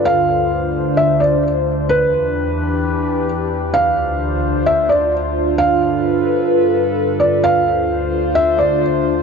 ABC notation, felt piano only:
X:1
M:4/4
L:1/8
Q:1/4=130
K:Ddor
V:1 name="Felt piano"
f4 e d z2 | B6 z2 | f4 e d z2 | f6- f d |
f4 e d z2 |]